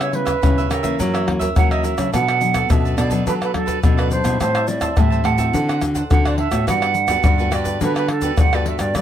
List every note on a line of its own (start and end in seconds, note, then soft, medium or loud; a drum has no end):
0.00 0.34 C#3 medium
0.00 0.40 C#3 medium
0.00 0.11 B4 medium
0.00 0.16 C#5 medium
0.00 0.11 C#5 medium
0.00 0.12 E5 medium
0.00 pandeiro soft
0.00 tamborim medium
0.00 shaker soft
0.12 0.30 G3 medium
0.12 0.31 B3 soft
0.12 0.31 E4 medium
0.12 0.72 B4 medium
0.12 muted cavaquinho stroke soft
0.12 pandeiro medium
0.25 0.41 B4 medium
0.25 0.41 C#5 medium
0.25 0.40 E5 medium
0.25 pandeiro medium
0.25 tamborim medium
0.25 shaker medium
0.25 surdo soft
0.42 0.97 C#3 medium
0.42 0.67 C#3 medium
0.42 0.69 G3 soft
0.42 0.69 B3 medium
0.42 0.70 E4 medium
0.42 0.55 G4 soft
0.42 0.56 B4 medium
0.42 0.56 C#5 medium
0.42 0.56 E5 medium
0.42 pandeiro medium
0.42 tamborim medium
0.42 shaker medium
0.42 surdo medium
0.58 0.70 B4 soft
0.58 0.70 C#5 medium
0.58 0.70 E5 medium
0.58 pandeiro soft
0.58 shaker soft
0.70 0.95 C#3 medium
0.70 0.84 G4 medium
0.70 1.29 A#4 medium
0.70 0.83 B4 medium
0.70 0.83 C#5 medium
0.70 0.82 E5 medium
0.70 pandeiro medium
0.70 tamborim medium
0.70 shaker medium
0.83 1.23 E3 medium
0.83 1.23 A#3 medium
0.83 1.23 C#4 medium
0.83 0.98 B4 medium
0.83 0.98 C#5 medium
0.83 0.97 E5 medium
0.83 pandeiro medium
0.83 shaker medium
0.83 surdo soft
0.99 1.54 F#2 medium
0.99 1.48 F#3 medium
0.99 1.12 F#4 soft
0.99 1.13 A#4 medium
0.99 1.13 C#5 soft
0.99 1.12 E5 medium
0.99 pandeiro medium
0.99 shaker medium
0.99 surdo medium
1.14 1.26 A#4 medium
1.14 1.26 C#5 medium
1.14 1.26 E5 medium
1.14 pandeiro soft
1.14 tamborim medium
1.14 shaker soft
1.27 1.45 E3 medium
1.27 1.45 A#3 medium
1.27 1.45 C#4 medium
1.27 muted cavaquinho stroke soft
1.27 pandeiro medium
1.27 tamborim medium
1.27 surdo soft
1.39 1.69 A#4 medium
1.39 1.69 C#5 medium
1.39 1.68 E5 medium
1.39 pandeiro medium
1.39 shaker medium
1.39 surdo soft
1.56 2.11 C#3 medium
1.56 1.95 E3 medium
1.56 1.93 F#3 medium
1.56 1.95 A#3 medium
1.56 1.96 C#4 medium
1.56 1.72 F#5 loud
1.56 pandeiro medium
1.56 tamborim medium
1.56 shaker medium
1.56 surdo loud
1.71 1.83 A#4 medium
1.71 1.83 C#5 medium
1.71 1.86 D#5 medium
1.71 1.83 E5 medium
1.71 pandeiro soft
1.71 tamborim medium
1.71 shaker soft
1.83 2.11 F#4 soft
1.83 2.12 A#4 soft
1.83 2.12 C#5 soft
1.83 2.12 E5 soft
1.83 2.13 E5 medium
1.83 pandeiro medium
1.83 shaker medium
1.97 2.11 C#3 medium
1.97 2.36 F#3 medium
1.97 2.37 A3 medium
1.97 2.37 D4 medium
1.97 pandeiro medium
1.97 tamborim medium
1.97 shaker medium
1.97 surdo soft
2.12 2.68 B2 medium
2.12 2.62 B2 medium
2.12 2.26 D4 soft
2.12 2.26 A4 soft
2.12 2.27 B4 medium
2.12 2.26 D5 medium
2.12 2.71 F#5 loud
2.12 pandeiro medium
2.12 tamborim medium
2.12 shaker medium
2.12 surdo medium
2.27 2.41 A4 soft
2.27 2.41 B4 medium
2.27 2.41 D5 medium
2.27 pandeiro soft
2.27 tamborim medium
2.27 shaker soft
2.40 2.65 F#3 medium
2.40 2.65 A3 medium
2.40 2.66 D4 medium
2.40 muted cavaquinho stroke soft
2.40 pandeiro medium
2.40 shaker medium
2.54 2.69 A4 medium
2.54 2.68 B4 medium
2.54 2.68 D5 medium
2.54 pandeiro medium
2.54 tamborim medium
2.54 shaker medium
2.54 surdo soft
2.70 3.25 F#2 medium
2.70 2.94 B2 medium
2.70 3.09 F#3 soft
2.70 3.09 A3 soft
2.70 2.83 D4 soft
2.70 3.09 D4 medium
2.70 2.84 A4 soft
2.70 2.84 B4 medium
2.70 2.84 D5 medium
2.70 2.99 E5 medium
2.70 pandeiro medium
2.70 tamborim medium
2.70 shaker medium
2.70 surdo medium
2.85 2.96 A4 soft
2.85 2.97 B4 medium
2.85 2.97 D5 medium
2.85 pandeiro soft
2.85 shaker soft
2.97 3.23 B2 medium
2.97 3.11 D4 medium
2.97 3.11 A4 medium
2.97 3.10 B4 medium
2.97 3.27 D5 medium
2.97 3.09 D5 medium
2.97 pandeiro medium
2.97 tamborim medium
2.97 shaker medium
3.10 3.50 F#3 medium
3.10 3.51 A3 medium
3.10 3.51 D4 medium
3.10 3.25 A4 medium
3.10 3.25 B4 medium
3.10 3.25 D5 medium
3.10 pandeiro medium
3.10 shaker medium
3.10 surdo soft
3.27 3.81 B2 medium
3.27 3.75 F#3 medium
3.27 3.40 D4 soft
3.27 3.40 A4 medium
3.27 3.41 B4 medium
3.27 3.34 B4 medium
3.27 3.40 D5 soft
3.27 pandeiro medium
3.27 shaker medium
3.27 surdo medium
3.41 3.53 A4 medium
3.41 3.53 B4 medium
3.41 3.54 B4 medium
3.41 3.53 D5 medium
3.41 pandeiro soft
3.41 tamborim medium
3.41 shaker soft
3.54 3.79 F#3 medium
3.54 3.79 A3 medium
3.54 3.79 D4 medium
3.54 3.82 A4 medium
3.54 muted cavaquinho stroke soft
3.54 pandeiro medium
3.54 tamborim medium
3.54 surdo soft
3.66 3.96 A4 medium
3.66 3.96 B4 medium
3.66 3.95 D5 medium
3.66 pandeiro medium
3.66 shaker medium
3.66 surdo soft
3.83 4.38 F#2 medium
3.83 4.20 B2 medium
3.83 4.11 F#3 medium
3.83 4.11 A3 medium
3.83 4.11 D4 medium
3.83 4.01 A4 medium
3.83 pandeiro medium
3.83 tamborim medium
3.83 shaker medium
3.83 surdo loud
3.97 4.09 A4 medium
3.97 4.10 B4 medium
3.97 4.11 D5 medium
3.97 pandeiro soft
3.97 tamborim medium
3.97 shaker soft
4.10 4.39 D4 soft
4.10 4.39 A4 soft
4.10 4.39 B4 medium
4.10 4.38 C5 medium
4.10 4.40 D5 medium
4.10 pandeiro medium
4.10 shaker medium
4.24 4.37 B2 medium
4.24 4.64 G3 medium
4.24 4.64 C4 medium
4.24 4.64 E4 medium
4.24 pandeiro medium
4.24 tamborim medium
4.24 shaker medium
4.24 surdo soft
4.40 4.89 A2 medium
4.40 4.95 A2 medium
4.40 4.54 G4 medium
4.40 4.69 C5 medium
4.40 4.54 C5 medium
4.40 4.54 E5 soft
4.40 4.53 A5 soft
4.40 pandeiro medium
4.40 tamborim medium
4.40 shaker medium
4.40 surdo medium
4.55 4.66 C5 medium
4.55 4.66 E5 medium
4.55 4.67 A5 medium
4.55 pandeiro soft
4.55 tamborim medium
4.55 shaker soft
4.67 4.92 G3 medium
4.67 4.93 C4 medium
4.67 4.93 E4 medium
4.67 5.00 D5 medium
4.67 pandeiro medium
4.67 shaker medium
4.81 4.96 C5 medium
4.81 4.96 E5 medium
4.81 4.95 A5 medium
4.81 pandeiro medium
4.81 tamborim medium
4.81 shaker medium
4.81 surdo soft
4.96 5.22 A2 medium
4.96 5.52 E3 soft
4.96 5.36 G3 medium
4.96 5.36 C4 soft
4.96 5.36 E4 medium
4.96 5.10 G4 soft
4.96 5.11 C5 medium
4.96 5.10 E5 soft
4.96 5.26 E5 medium
4.96 5.09 A5 medium
4.96 pandeiro medium
4.96 tamborim medium
4.96 shaker medium
4.96 surdo medium
5.10 5.23 C5 medium
5.10 5.23 E5 medium
5.10 5.24 A5 medium
5.10 pandeiro soft
5.10 shaker soft
5.24 5.49 A2 medium
5.24 5.38 G4 medium
5.24 5.38 C5 medium
5.24 5.38 E5 medium
5.24 5.82 F#5 medium
5.24 5.37 A5 medium
5.24 pandeiro medium
5.24 tamborim medium
5.38 5.77 C4 medium
5.38 5.77 F#4 medium
5.38 5.78 A4 medium
5.38 5.53 C5 soft
5.38 5.53 E5 medium
5.38 5.52 A5 medium
5.38 pandeiro medium
5.38 shaker medium
5.38 surdo soft
5.53 6.02 D3 loud
5.53 6.08 D3 medium
5.53 5.67 D4 soft
5.53 5.67 C5 soft
5.53 5.68 D5 soft
5.53 5.67 F#5 medium
5.53 pandeiro medium
5.53 shaker medium
5.53 surdo medium
5.69 5.80 C5 medium
5.69 5.81 D5 medium
5.69 5.81 F#5 medium
5.69 pandeiro soft
5.69 tamborim medium
5.69 shaker soft
5.81 5.99 C4 medium
5.81 5.99 F#4 soft
5.81 5.99 A4 medium
5.81 muted cavaquinho stroke soft
5.81 pandeiro medium
5.81 tamborim medium
5.81 shaker medium
5.81 surdo soft
5.95 6.24 C5 medium
5.95 6.24 D5 medium
5.95 6.23 F#5 medium
5.95 pandeiro medium
5.95 shaker medium
5.95 surdo soft
6.10 6.65 A2 medium
6.10 6.47 D3 medium
6.10 6.38 C4 medium
6.10 6.38 F#4 medium
6.10 6.38 A4 medium
6.10 6.28 F#5 medium
6.10 pandeiro medium
6.10 tamborim medium
6.10 shaker medium
6.10 surdo loud
6.25 6.37 C5 medium
6.25 6.38 D5 medium
6.25 6.38 F#5 medium
6.25 pandeiro soft
6.25 tamborim medium
6.25 shaker soft
6.37 6.66 D4 soft
6.37 6.66 C5 soft
6.37 6.67 D5 medium
6.37 6.65 E5 medium
6.37 6.67 F#5 medium
6.37 pandeiro medium
6.51 6.65 A2 medium
6.51 6.91 B3 medium
6.51 6.91 F#4 medium
6.51 6.92 A4 medium
6.51 pandeiro medium
6.51 tamborim medium
6.51 shaker medium
6.51 surdo soft
6.67 7.16 G2 medium
6.67 7.22 G3 medium
6.67 6.81 F#4 soft
6.67 6.81 G4 soft
6.67 6.81 B4 medium
6.67 6.80 D5 medium
6.67 7.55 F#5 medium
6.67 pandeiro medium
6.67 tamborim medium
6.67 shaker medium
6.67 surdo medium
6.81 6.94 G4 medium
6.81 6.94 B4 medium
6.81 6.94 D5 medium
6.81 pandeiro soft
6.81 tamborim medium
6.81 shaker soft
6.95 muted cavaquinho stroke soft
6.95 pandeiro medium
6.95 shaker medium
7.08 7.34 B3 medium
7.08 7.34 F#4 medium
7.08 7.23 G4 medium
7.08 7.34 A4 medium
7.08 7.23 B4 medium
7.08 7.22 D5 medium
7.08 pandeiro medium
7.08 tamborim medium
7.08 shaker medium
7.08 surdo soft
7.24 7.49 G2 medium
7.24 7.79 D3 medium
7.24 7.37 F#4 soft
7.24 7.38 G4 medium
7.24 7.38 B4 medium
7.24 7.37 D5 soft
7.24 pandeiro medium
7.24 tamborim medium
7.24 shaker medium
7.24 surdo medium
7.38 7.78 B3 medium
7.38 7.78 F#4 medium
7.38 7.50 G4 medium
7.38 7.78 A4 medium
7.38 7.51 B4 medium
7.38 7.51 D5 medium
7.38 pandeiro soft
7.38 shaker soft
7.51 7.77 G2 medium
7.51 7.65 F#4 medium
7.51 7.65 G4 medium
7.51 7.64 B4 medium
7.51 7.63 D5 medium
7.51 7.82 D5 medium
7.51 pandeiro medium
7.51 tamborim medium
7.51 shaker medium
7.64 7.79 G4 medium
7.64 7.79 B4 medium
7.64 7.79 D5 medium
7.64 pandeiro medium
7.64 shaker medium
7.64 surdo soft
7.80 8.30 D3 medium
7.80 8.36 G3 medium
7.80 8.09 B3 medium
7.80 7.94 F#4 soft
7.80 7.94 G4 soft
7.80 7.94 B4 soft
7.80 7.96 B4 medium
7.80 7.94 D5 medium
7.80 pandeiro medium
7.80 shaker medium
7.80 surdo medium
7.84 8.09 F#4 medium
7.84 8.09 A4 medium
7.95 8.08 G4 medium
7.95 8.08 B4 medium
7.95 8.10 B4 medium
7.95 8.08 D5 medium
7.95 pandeiro soft
7.95 tamborim medium
7.95 shaker soft
8.08 8.41 A4 medium
8.08 muted cavaquinho stroke soft
8.08 pandeiro medium
8.08 tamborim medium
8.21 8.48 B3 medium
8.21 8.48 F#4 medium
8.21 8.51 G4 medium
8.21 8.48 A4 medium
8.21 8.51 B4 medium
8.21 8.50 D5 medium
8.21 pandeiro medium
8.21 shaker medium
8.21 surdo soft
8.38 8.75 G2 medium
8.38 8.93 D3 medium
8.38 8.56 F#5 medium
8.38 pandeiro medium
8.38 tamborim medium
8.38 shaker medium
8.38 surdo loud
8.53 8.92 B3 medium
8.53 8.91 F#4 medium
8.53 8.64 G4 medium
8.53 8.92 A4 medium
8.53 8.65 B4 medium
8.53 8.66 D5 medium
8.53 8.70 D5 medium
8.53 pandeiro soft
8.53 tamborim medium
8.53 shaker soft
8.65 8.93 F#4 soft
8.65 8.93 G4 soft
8.65 8.94 B4 soft
8.65 8.94 D5 soft
8.65 8.82 E5 medium
8.65 pandeiro medium
8.79 8.92 G2 medium
8.79 8.95 D5 medium
8.79 pandeiro medium
8.79 tamborim medium
8.79 shaker medium
8.79 surdo soft
8.94 9.02 G2 medium
8.94 9.02 G3 medium
8.94 9.02 F#4 soft
8.94 9.02 G4 medium
8.94 9.02 B4 medium
8.94 9.02 D5 medium
8.94 pandeiro medium
8.94 tamborim medium
8.94 shaker medium
8.94 surdo medium